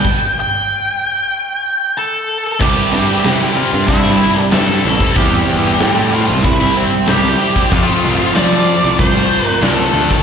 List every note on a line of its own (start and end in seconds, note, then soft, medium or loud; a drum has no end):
0.00 0.37 G5 medium
0.04 kick loud
0.04 crash loud
0.40 2.27 G5 loud
1.98 2.58 A4 medium
1.98 2.63 A5 loud
2.60 2.74 C2 loud
2.60 2.91 C3 medium
2.60 3.24 E3 medium
2.60 2.91 G3 medium
2.60 2.92 C4 medium
2.60 2.93 E4 loud
2.60 3.53 G4 medium
2.60 3.56 G5 loud
2.60 kick loud
2.60 crash loud
2.91 3.06 G2 medium
2.91 3.23 C3 medium
2.91 3.24 G3 medium
2.91 3.25 C4 medium
2.91 3.25 E4 medium
3.07 3.25 G3 medium
3.07 3.25 C4 medium
3.07 3.25 E4 medium
3.24 3.57 C3 medium
3.24 3.63 C3 medium
3.24 3.55 E3 medium
3.24 3.43 G3 loud
3.24 3.42 C4 loud
3.24 3.41 E4 loud
3.24 snare loud
3.24 open hi-hat medium
3.41 3.57 G3 medium
3.41 3.58 C4 medium
3.41 3.58 E4 medium
3.55 3.72 E3 medium
3.55 3.72 G3 medium
3.55 3.73 C4 medium
3.55 3.72 E4 medium
3.55 3.87 F4 medium
3.55 3.88 F5 medium
3.55 muted overdriven electric guitar stroke soft
3.73 3.86 G2 loud
3.73 3.88 G3 medium
3.73 3.90 C4 medium
3.73 3.89 E4 medium
3.73 muted distorted electric guitar stroke medium
3.88 4.14 G2 loud
3.88 4.36 C3 medium
3.88 4.05 G3 medium
3.88 4.05 C4 medium
3.88 4.33 E4 medium
3.88 4.03 E4 medium
3.88 4.38 E5 loud
3.88 kick loud
3.88 open hi-hat medium
4.04 4.52 G3 medium
4.04 4.54 C4 medium
4.04 4.53 E4 medium
4.35 4.40 D4 medium
4.35 4.40 D5 medium
4.35 muted distorted electric guitar stroke medium
4.51 4.79 G2 medium
4.51 4.83 C3 loud
4.51 4.82 E3 loud
4.51 4.70 G3 medium
4.51 4.69 C4 loud
4.51 4.67 E4 loud
4.51 5.13 A4 medium
4.51 5.18 A5 loud
4.51 snare loud
4.51 open hi-hat medium
4.68 4.83 G3 medium
4.68 4.85 C4 medium
4.68 4.85 E4 medium
4.83 4.98 A1 loud
4.83 5.14 C3 medium
4.83 5.15 E3 medium
4.83 5.01 G3 medium
4.83 5.00 C4 medium
4.83 4.99 E4 medium
5.00 5.15 G3 medium
5.00 5.17 C4 medium
5.00 5.16 E4 medium
5.00 kick medium
5.15 5.42 E2 loud
5.15 5.45 C3 medium
5.15 5.80 E3 loud
5.15 5.46 G3 loud
5.15 5.47 C4 loud
5.15 5.47 E4 loud
5.15 6.08 G4 medium
5.15 6.16 G5 loud
5.15 kick loud
5.15 open hi-hat medium
5.46 5.74 E2 loud
5.46 5.78 C3 medium
5.46 5.79 G3 medium
5.46 5.80 C4 medium
5.46 5.80 E4 loud
5.64 5.80 G3 medium
5.64 5.82 C4 medium
5.64 5.82 E4 medium
5.79 6.30 A2 medium
5.79 6.11 C3 medium
5.79 6.11 E3 loud
5.79 5.95 G3 loud
5.79 5.95 C4 medium
5.79 5.93 E4 loud
5.79 snare loud
5.79 open hi-hat medium
5.94 6.12 G3 medium
5.94 6.12 C4 medium
5.94 6.12 E4 medium
6.12 6.29 E3 medium
6.12 6.29 G3 medium
6.12 6.29 C4 medium
6.12 6.27 E4 medium
6.12 6.43 F4 medium
6.12 6.43 F5 loud
6.12 muted overdriven electric guitar stroke soft
6.28 6.41 C2 medium
6.28 6.44 G3 medium
6.28 6.46 C4 medium
6.28 6.45 E4 medium
6.28 muted distorted electric guitar stroke medium
6.43 6.70 C2 medium
6.43 6.92 C3 medium
6.43 6.61 G3 medium
6.43 6.61 C4 medium
6.43 6.74 E4 medium
6.43 6.58 E4 medium
6.43 6.77 E5 loud
6.43 kick loud
6.43 open hi-hat medium
6.60 7.06 G3 medium
6.60 7.08 C4 medium
6.60 7.07 E4 medium
6.77 7.06 C4 medium
6.77 7.09 C5 medium
6.93 muted distorted electric guitar stroke soft
7.06 7.34 C2 medium
7.06 7.38 C3 loud
7.06 7.37 E3 loud
7.06 7.23 G3 loud
7.06 7.23 C4 loud
7.06 7.21 E4 loud
7.06 7.68 G4 medium
7.06 7.74 G5 loud
7.06 snare loud
7.06 open hi-hat medium
7.22 7.40 G3 medium
7.22 7.40 C4 medium
7.22 7.41 E4 medium
7.39 7.70 C3 medium
7.39 7.69 E3 medium
7.39 7.57 G3 medium
7.39 7.56 C4 medium
7.39 7.54 E4 medium
7.55 7.71 G3 medium
7.55 7.73 C4 medium
7.55 7.70 E4 medium
7.55 kick medium
7.71 8.33 F2 loud
7.71 7.85 F2 loud
7.71 8.01 C3 medium
7.71 8.03 F3 medium
7.71 8.03 A3 medium
7.71 8.05 C4 loud
7.71 8.32 F4 medium
7.71 8.19 F4 loud
7.71 8.34 F5 loud
7.71 kick loud
7.71 crash loud
8.02 8.17 C2 loud
8.02 8.32 C3 medium
8.02 8.34 F3 medium
8.02 8.34 A3 medium
8.02 8.35 C4 loud
8.20 8.36 A3 medium
8.20 8.37 C4 medium
8.20 8.37 F4 medium
8.34 8.83 F2 loud
8.34 8.64 C3 loud
8.34 8.51 F3 loud
8.34 8.74 F3 medium
8.34 8.50 A3 loud
8.34 8.49 C4 loud
8.34 8.68 F4 loud
8.34 8.95 D5 medium
8.34 8.99 D6 loud
8.34 snare loud
8.34 open hi-hat medium
8.50 8.65 F3 medium
8.50 8.65 A3 medium
8.50 8.65 C4 medium
8.65 9.15 F3 medium
8.65 8.83 A3 medium
8.65 8.83 C4 medium
8.65 muted overdriven electric guitar stroke soft
8.70 8.82 F4 medium
8.81 8.97 C2 loud
8.81 8.98 F3 medium
8.81 8.99 A3 medium
8.81 9.00 C4 medium
8.81 muted distorted electric guitar stroke medium
8.99 9.25 C2 loud
8.99 9.47 C3 medium
8.99 9.14 F3 medium
8.99 9.13 A3 medium
8.99 9.12 C4 medium
8.99 9.59 C5 medium
8.99 9.42 C6 medium
8.99 kick loud
8.99 open hi-hat medium
9.13 9.61 F3 medium
9.13 9.62 A3 medium
9.13 9.62 C4 medium
9.13 9.46 F4 medium
9.42 9.59 B5 medium
9.47 muted distorted electric guitar stroke medium
9.61 9.89 C2 medium
9.61 10.10 F2 medium
9.61 9.91 C3 medium
9.61 9.77 F3 loud
9.61 9.77 A3 loud
9.61 9.75 C4 loud
9.61 10.23 A4 medium
9.61 10.22 A5 loud
9.61 snare loud
9.61 open hi-hat medium
9.65 9.96 F4 loud
9.76 9.92 F3 medium
9.76 9.93 A3 medium
9.76 9.93 C4 medium
9.93 10.07 D2 loud
9.93 10.23 C3 medium
9.93 10.09 F3 medium
9.93 10.09 A3 medium
9.93 10.08 C4 medium
9.98 10.10 F4 medium
10.09 10.23 F3 medium
10.09 10.23 A3 medium
10.09 10.23 C4 medium
10.09 10.23 F4 medium
10.09 kick medium
10.09 snare soft